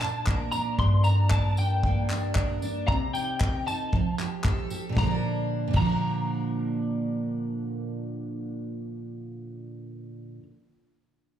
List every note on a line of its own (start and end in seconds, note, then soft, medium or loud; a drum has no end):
0.00 0.78 A#2 medium
0.00 1.83 A#3 medium
0.00 0.53 D4 medium
0.00 0.27 A#4 medium
0.00 0.51 A5 loud
0.00 clap medium
0.00 tambourine medium
0.27 1.31 A#4 medium
0.27 kick loud
0.27 clap loud
0.52 1.06 D4 medium
0.52 0.78 A#5 loud
0.52 tambourine medium
0.79 2.87 G2 loud
0.79 1.03 C6 loud
0.79 kick loud
1.04 1.57 D4 medium
1.04 1.30 A#5 loud
1.04 tambourine medium
1.31 2.35 A#4 medium
1.31 1.58 A5 loud
1.31 kick loud
1.31 clap loud
1.57 2.09 D4 medium
1.57 2.58 G5 loud
1.57 tambourine medium
1.83 2.94 A#3 medium
1.83 kick loud
2.09 2.61 D4 medium
2.09 clap medium
2.09 tambourine medium
2.35 2.94 A#4 medium
2.35 kick loud
2.35 clap loud
2.62 2.94 D4 medium
2.62 tambourine medium
2.88 3.98 C3 loud
2.88 3.13 A#5 loud
2.88 kick loud
3.13 3.66 D#4 medium
3.13 3.67 G5 loud
3.13 tambourine medium
3.40 3.99 A#4 medium
3.40 kick loud
3.40 clap loud
3.67 3.99 D#4 medium
3.67 4.67 A5 medium
3.67 tambourine medium
3.92 4.99 F3 medium
3.92 kick loud
4.19 4.70 G4 medium
4.19 clap medium
4.19 tambourine medium
4.44 5.02 A4 medium
4.44 kick loud
4.44 clap loud
4.70 5.02 G4 medium
4.70 tambourine medium
4.89 5.67 A#2 medium
4.95 5.73 D3 medium
4.95 5.77 F3 medium
4.95 5.13 A#5 medium
4.95 kick loud
4.95 snare loud
5.03 5.81 A#3 loud
5.03 5.86 D4 loud
5.11 5.89 A#4 medium
5.68 10.37 A#2 medium
5.73 10.43 D3 medium
5.73 10.42 A#5 loud
5.73 kick loud
5.73 crash medium
5.77 10.47 F3 medium
5.82 10.52 A#3 loud
5.86 10.56 D4 loud
5.86 10.59 A#4 medium